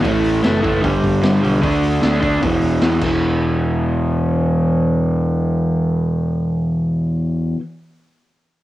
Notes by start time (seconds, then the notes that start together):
0.01 A1 A2 E3 A3, kick, open hi-hat
0.24 open hi-hat
0.42 F#1 A2 E3 A3, snare, open hi-hat
0.61 A2 E3 A3, open hi-hat
0.65 kick
0.81 G1 G2 D3 G3, kick, open hi-hat
1.03 G1, kick, open hi-hat
1.22 G2 D3 G3, snare, open hi-hat
1.40 B1 G2 D3 G3, open hi-hat
1.61 D2 D3 A3 D4, kick, open hi-hat
1.83 open hi-hat
2.00 D2 D3 A3 D4, snare, open hi-hat
2.19 D3 A3 D4, kick, open hi-hat
2.41 E1 E2 B2 E3, kick, open hi-hat
2.62 E1, open hi-hat
2.81 E2 B2 E3, snare, open hi-hat
2.99 E1 E2 B2, kick, crash
3.04 E3